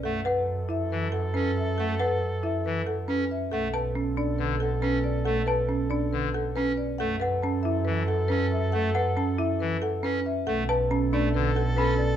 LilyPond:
<<
  \new Staff \with { instrumentName = "Xylophone" } { \time 4/4 \key fis \phrygian \tempo 4 = 138 r8 fis''8 r2. | r8 fis''8 r2. | r8 a''8 r2. | r8 a''8 r2. |
r8 fis''8 r2. | r8 fis''8 r2. | r8 a''8 r2 b''8 r8 | }
  \new Staff \with { instrumentName = "Marimba" } { \time 4/4 \key fis \phrygian fis''8 b'8 r8 e''8 b'8 fis''8 b'8 e''8 | fis''8 b'8 r8 e''8 b'8 fis''8 b'8 e''8 | fis''8 b'8 r8 d''8 b'8 fis''8 b'8 d''8 | fis''8 b'8 r8 d''8 b'8 fis''8 b'8 d''8 |
fis''8 b'8 a''8 e''8 b'8 fis''8 b'8 e''8 | fis''8 b'8 a''8 e''8 b'8 fis''8 b'8 e''8 | fis''8 b'8 a''8 d''8 b'8 fis''8 b'8 d''8 | }
  \new Staff \with { instrumentName = "Marimba" } { \time 4/4 \key fis \phrygian a'8 b'8 r8 e'8 r8 a'8 cis'8 r8 | a'8 b'8 r8 e'8 r8 a'8 cis'8 r8 | a'8 b'8 cis'8 d'8 r8 a'8 cis'8 r8 | a'8 b'8 cis'8 d'8 r8 a'8 cis'8 r8 |
a'8 b'8 cis'8 e'8 r8 a'8 cis'8 r8 | a'8 b'8 cis'8 e'8 r8 a'8 cis'8 r8 | a'8 b'8 cis'8 d'8 r8 a'8 cis'8 r8 | }
  \new Staff \with { instrumentName = "Soprano saxophone" } { \time 4/4 \key fis \phrygian a'1~ | a'2.~ a'8 r8 | a'1~ | a'2.~ a'8 r8 |
a'1~ | a'2.~ a'8 r8 | a'1 | }
  \new Staff \with { instrumentName = "Pipe organ" } { \time 4/4 \key fis \phrygian a8 r4. e8 r8 cis'8 r8 | a8 r4. e8 r8 cis'8 r8 | a8 r4. d8 r8 cis'8 r8 | a8 r4. d8 r8 cis'8 r8 |
a8 r4. e8 r8 cis'8 r8 | a8 r4. e8 r8 cis'8 r8 | a8 r4 a8 d8 r8 cis'8 r8 | }
  \new Staff \with { instrumentName = "Double bass" } { \clef bass \time 4/4 \key fis \phrygian fis,1~ | fis,1 | b,,1~ | b,,1 |
fis,1~ | fis,1 | b,,1 | }
>>